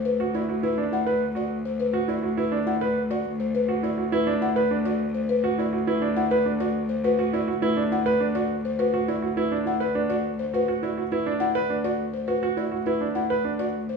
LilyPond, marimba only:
\new Staff \with { instrumentName = "Marimba" } { \time 3/4 \key d \mixolydian \tempo 4 = 103 b'16 r16 d''16 r16 b'16 r16 fis''16 b'16 r16 d''16 r16 c''16 | b'16 r16 d''16 r16 b'16 r16 fis''16 b'16 r16 d''16 r16 c''16 | b'16 r16 d''16 r16 b'16 r16 fis''16 b'16 r16 d''16 r16 c''16 | b'16 r16 d''16 r16 b'16 r16 fis''16 b'16 r16 d''16 r16 c''16 |
b'16 r16 d''16 r16 b'16 r16 fis''16 b'16 r16 d''16 r16 c''16 | b'16 r16 d''16 r16 b'16 r16 fis''16 b'16 r16 d''16 r16 c''16 | b'16 r16 d''16 r16 b'16 r16 fis''16 b'16 r16 d''16 r16 c''16 | b'16 r16 d''16 r16 b'16 r16 fis''16 b'16 r16 d''16 r16 c''16 | }